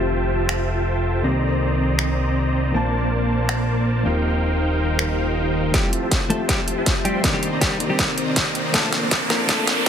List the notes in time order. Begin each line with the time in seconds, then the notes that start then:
Already playing: F1 F3 A3 C4 F4 G4 C5 E5 G5 A5
0.49 finger snap
1.22 C2 D#3 A#3 C4 G4 C5 D5 D#5 A#5
1.99 finger snap
2.72 A#1 F3 A#3 C4 D4 A#4 C5 D5 A5
2.76 A5
3.49 finger snap
4.03 D#1 D#3 F3 A#3 C4 D#4 F4 G4 A#4 C5 F5 G5
4.99 finger snap
5.72 F3 G3 A3 C4 E4 F4 G4 C5 A5, kick, snare, closed hi-hat, riser
5.76 G4
5.93 closed hi-hat
6.03 F4 C5 E5 G5 A5
6.11 kick, snare, closed hi-hat
6.28 F3 A3 C4 G4 A4 E5, closed hi-hat
6.48 G3 G4, kick, snare, closed hi-hat
6.68 closed hi-hat
6.78 F4 C5 E5 G5 A5
6.86 kick, snare, closed hi-hat
7.05 G3 F4 G4 C5 E5 G5 C6, closed hi-hat
7.22 D#3 A#3 C4 D4 G4, kick, snare, closed hi-hat
7.33 G3 G4
7.43 closed hi-hat
7.53 C4 C5 D5 D#5 A#5
7.61 G3 G4, kick, snare, closed hi-hat
7.78 D#3 A#3 C4, closed hi-hat
7.82 G4
7.89 G3 G4
7.99 kick, snare, closed hi-hat
8.18 C4 C5 D5 D#5 A#5, closed hi-hat
8.28 C4 C5 D5 D#5 A#5
8.36 kick, snare, closed hi-hat
8.46 C4 C5 D5 D#5 A#5
8.55 closed hi-hat
8.65 C4 C5 D5 D#5 A#5
8.72 F3 A3 A#3 C4 D4 A4 A#4 C5 D5, kick, snare, closed hi-hat
8.93 snare, closed hi-hat
9.02 A#3 A#4 C5 D5 A5
9.11 kick, snare, closed hi-hat
9.28 F3 A#3 C4 D4 A4 A#4, snare, closed hi-hat
9.47 F3 A3 A#3 C4 D4 A4 D5 A5, kick, snare, closed hi-hat
9.51 A4
9.68 snare, closed hi-hat
9.77 A#3 A#4 C5 D5 A5